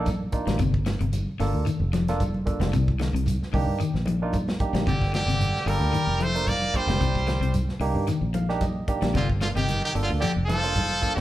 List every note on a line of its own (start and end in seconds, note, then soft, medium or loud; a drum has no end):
0.00 0.43 A#1 loud
0.06 kick medium
0.06 snare soft
0.06 closed hi-hat medium
0.06 high conga medium
0.06 shekere medium
0.32 0.59 A#3 medium
0.32 0.59 D4 medium
0.32 0.59 D#4 medium
0.32 0.59 F4 medium
0.32 kick medium
0.32 closed hi-hat medium
0.32 shekere soft
0.47 0.58 A1 loud
0.47 0.55 G3 medium
0.47 snare medium
0.47 closed hi-hat medium
0.47 low conga medium
0.59 0.97 G1 loud
0.59 0.77 C3 medium
0.59 kick medium
0.59 closed hi-hat medium
0.59 high conga soft
0.59 low conga medium
0.59 shekere medium
0.74 kick medium
0.86 0.96 D3 medium
0.86 snare medium
0.86 closed hi-hat soft
0.86 high conga medium
0.86 shekere soft
1.00 1.25 G1 medium
1.00 1.18 C3 medium
1.00 closed hi-hat medium
1.13 closed hi-hat medium
1.13 high conga medium
1.13 shekere medium
1.28 high conga soft
1.40 1.53 G1 loud
1.40 1.57 D3 medium
1.40 1.65 A#3 loud
1.40 1.65 D4 medium
1.40 1.65 F4 medium
1.40 1.65 A4 loud
1.40 snare soft
1.40 open hi-hat medium
1.40 shekere soft
1.53 1.65 D2 medium
1.66 1.84 D#3 medium
1.66 closed hi-hat medium
1.66 high conga soft
1.66 shekere medium
1.80 2.56 F1 medium
1.93 2.11 F3 medium
1.93 snare soft
1.93 closed hi-hat soft
1.93 high conga loud
1.93 shekere soft
2.08 2.22 A#3 loud
2.08 2.22 D4 medium
2.08 2.22 F4 loud
2.08 2.22 A4 loud
2.08 snare soft
2.08 closed hi-hat soft
2.20 kick medium
2.20 closed hi-hat medium
2.20 high conga loud
2.20 shekere medium
2.34 high conga medium
2.46 2.73 A#3 medium
2.46 2.73 D4 medium
2.46 2.73 F4 medium
2.46 2.73 A4 medium
2.46 kick medium
2.46 closed hi-hat medium
2.46 shekere soft
2.60 2.71 F1 loud
2.60 2.69 G3 medium
2.60 snare medium
2.60 closed hi-hat soft
2.60 low conga medium
2.73 3.11 C2 loud
2.73 2.91 C3 loud
2.73 kick medium
2.73 closed hi-hat medium
2.73 high conga soft
2.73 low conga medium
2.73 shekere medium
2.88 kick medium
2.99 3.09 D3 medium
2.99 snare medium
2.99 closed hi-hat soft
2.99 high conga medium
2.99 shekere soft
3.13 3.38 C2 medium
3.13 3.32 C3 medium
3.13 closed hi-hat medium
3.26 closed hi-hat medium
3.26 high conga medium
3.26 shekere medium
3.41 snare soft
3.41 high conga soft
3.52 3.66 C2 loud
3.52 3.71 D3 medium
3.52 3.79 A#3 loud
3.52 3.79 D4 medium
3.52 3.79 D#4 medium
3.52 3.79 G4 loud
3.52 kick medium
3.52 open hi-hat medium
3.52 high conga medium
3.52 shekere soft
3.66 3.78 G2 medium
3.78 3.97 D#3 medium
3.78 closed hi-hat medium
3.78 high conga soft
3.78 shekere medium
3.94 4.70 A#1 medium
3.94 snare soft
4.06 4.25 F3 medium
4.06 closed hi-hat medium
4.06 high conga medium
4.06 shekere soft
4.22 4.36 A#3 medium
4.22 4.36 D4 medium
4.22 4.36 D#4 loud
4.22 4.36 F4 loud
4.33 kick medium
4.33 closed hi-hat medium
4.33 high conga medium
4.33 shekere medium
4.48 snare medium
4.48 high conga medium
4.60 4.87 A#3 medium
4.60 4.87 D4 medium
4.60 4.87 D#4 medium
4.60 4.87 G4 loud
4.60 kick medium
4.60 closed hi-hat medium
4.60 shekere soft
4.73 4.85 A#1 loud
4.73 4.82 G3 medium
4.73 snare medium
4.73 closed hi-hat medium
4.73 low conga medium
4.87 5.25 G1 loud
4.87 5.04 C3 medium
4.87 5.12 D3 medium
4.87 5.12 G4 medium
4.87 kick medium
4.87 closed hi-hat medium
4.87 high conga soft
4.87 low conga medium
4.87 shekere medium
5.02 kick medium
5.02 snare soft
5.13 5.23 D3 medium
5.13 5.68 D3 medium
5.13 5.70 G4 medium
5.13 snare medium
5.13 closed hi-hat medium
5.13 high conga medium
5.13 shekere soft
5.26 5.51 G1 medium
5.26 5.46 C3 medium
5.26 snare soft
5.26 closed hi-hat medium
5.40 closed hi-hat medium
5.40 high conga medium
5.40 shekere loud
5.56 snare soft
5.56 high conga soft
5.66 5.79 G1 loud
5.66 5.84 D3 medium
5.66 6.23 G3 medium
5.66 5.92 A#3 medium
5.66 5.92 D4 medium
5.66 5.92 F4 medium
5.66 5.92 A4 medium
5.66 6.25 A#4 medium
5.66 open hi-hat medium
5.66 high conga medium
5.66 shekere soft
5.80 5.92 D2 medium
5.93 6.11 D#3 loud
5.93 closed hi-hat medium
5.93 high conga soft
5.93 shekere medium
6.07 6.84 F1 medium
6.20 6.37 F3 medium
6.20 6.51 A3 medium
6.20 6.49 C5 loud
6.20 closed hi-hat medium
6.20 high conga medium
6.20 shekere soft
6.35 6.49 A#3 medium
6.35 6.49 D4 medium
6.35 6.49 F4 medium
6.35 6.49 A#4 medium
6.35 closed hi-hat soft
6.47 6.77 A#3 loud
6.47 6.78 D5 loud
6.47 kick medium
6.47 snare soft
6.47 closed hi-hat medium
6.47 high conga medium
6.47 shekere medium
6.62 high conga medium
6.73 7.55 G3 medium
6.73 7.00 A#3 medium
6.73 7.01 D4 medium
6.73 7.01 F4 medium
6.73 7.01 C5 medium
6.73 7.56 C5 medium
6.73 kick medium
6.73 closed hi-hat medium
6.73 shekere soft
6.87 6.99 F1 loud
6.87 6.97 G3 medium
6.87 snare medium
6.87 closed hi-hat soft
6.87 low conga medium
7.01 7.39 C2 loud
7.01 7.18 C3 medium
7.01 kick medium
7.01 closed hi-hat medium
7.01 high conga soft
7.01 low conga medium
7.01 shekere loud
7.15 kick medium
7.15 snare soft
7.27 7.37 D3 medium
7.27 snare medium
7.27 closed hi-hat medium
7.27 high conga medium
7.27 shekere soft
7.41 7.66 C2 medium
7.41 7.59 C3 medium
7.41 closed hi-hat medium
7.54 closed hi-hat medium
7.54 high conga medium
7.54 shekere medium
7.69 snare soft
7.69 high conga soft
7.80 7.94 C2 medium
7.80 8.06 A#3 loud
7.80 8.06 D4 medium
7.80 8.06 D#4 medium
7.80 8.06 G4 loud
7.80 muted clean electric guitar stroke medium
7.80 open hi-hat medium
7.80 shekere soft
7.94 8.06 G2 medium
7.94 low conga medium
8.07 8.26 D#3 medium
8.07 snare soft
8.07 closed hi-hat medium
8.07 shekere loud
8.21 8.98 A#1 medium
8.34 8.52 F3 medium
8.34 8.59 F5 medium
8.34 closed hi-hat medium
8.34 high conga medium
8.34 shekere soft
8.49 8.63 A#3 loud
8.49 8.63 D4 loud
8.49 8.63 D#4 medium
8.49 8.63 G4 loud
8.49 snare soft
8.61 8.86 D#5 medium
8.61 kick medium
8.61 snare soft
8.61 closed hi-hat medium
8.61 high conga loud
8.61 shekere medium
8.88 9.15 A#3 medium
8.88 9.15 D4 medium
8.88 9.15 D#4 medium
8.88 9.15 G4 loud
8.88 9.13 D5 medium
8.88 kick medium
8.88 closed hi-hat medium
8.88 shekere soft
9.01 9.14 A#1 loud
9.01 9.10 G3 medium
9.01 snare medium
9.01 closed hi-hat medium
9.01 low conga medium
9.14 9.53 G1 loud
9.14 9.32 C3 medium
9.14 9.28 D3 medium
9.14 9.28 F4 medium
9.14 kick medium
9.14 closed hi-hat medium
9.14 high conga soft
9.14 low conga medium
9.14 shekere medium
9.30 kick medium
9.41 9.51 D3 medium
9.41 9.48 D3 medium
9.41 9.48 F4 medium
9.41 snare medium
9.41 closed hi-hat medium
9.41 high conga medium
9.55 9.80 G1 medium
9.55 9.74 C3 medium
9.55 9.84 D#3 medium
9.55 9.84 G4 loud
9.55 closed hi-hat medium
9.68 snare soft
9.68 closed hi-hat medium
9.68 high conga medium
9.68 shekere loud
9.83 9.93 D#3 medium
9.83 9.93 G4 loud
9.83 high conga soft
9.95 10.08 G1 loud
9.95 10.13 D3 medium
9.95 10.20 A#3 medium
9.95 10.20 D4 medium
9.95 10.20 F4 medium
9.95 10.21 A4 loud
9.95 open hi-hat medium
9.95 shekere soft
10.03 10.12 D3 medium
10.03 10.11 F4 medium
10.09 10.21 D2 medium
10.09 low conga medium
10.20 10.33 D3 medium
10.20 10.40 F3 medium
10.20 10.33 G4 medium
10.20 closed hi-hat medium
10.20 shekere medium
10.36 11.13 F1 medium
10.46 11.13 F3 loud
10.46 10.67 F3 medium
10.46 11.11 A4 loud
10.46 snare soft
10.46 closed hi-hat medium
10.46 high conga medium
10.46 shekere soft
10.63 10.78 A#3 medium
10.63 10.77 D4 medium
10.63 10.77 F4 medium
10.63 10.78 C5 loud
10.63 closed hi-hat medium
10.76 kick medium
10.76 closed hi-hat medium
10.76 high conga loud
10.76 shekere medium
11.02 11.21 A#3 medium
11.02 11.21 D4 medium
11.02 11.21 F4 medium
11.02 11.21 A4 medium
11.02 kick medium
11.02 closed hi-hat medium
11.02 shekere soft
11.15 11.21 F1 loud
11.15 11.21 D#3 medium
11.15 11.21 G3 medium
11.15 11.21 G4 loud